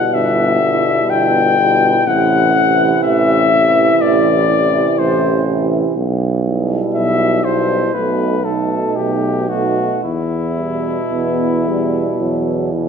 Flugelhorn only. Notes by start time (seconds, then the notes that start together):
Already playing: F#5
0.14 E5
1.10 G5
2.07 F#5
3.03 E5
4.01 D5
4.99 C5
6.94 E5
7.44 C5
7.94 B4
8.44 A4
8.96 G4
9.49 F#4
10.03 E4